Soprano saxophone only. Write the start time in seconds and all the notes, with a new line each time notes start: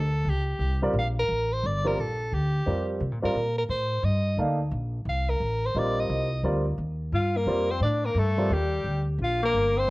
Already playing: A4
0.29 G4
0.98 F5
1.19 A#4
1.53 C5
1.66 D5
1.87 A#4
2.00 A4
2.34 G4
3.25 A#4
3.58 A#4
3.70 C5
4.05 D#5
5.09 F5
5.30 A#4
5.66 C5
5.78 D5
6.00 D#5
7.15 F5
7.37 A#4
7.71 C5
7.83 D5
8.05 A#4
8.19 A4
8.54 G4
9.24 F5
9.45 A#4
9.79 C5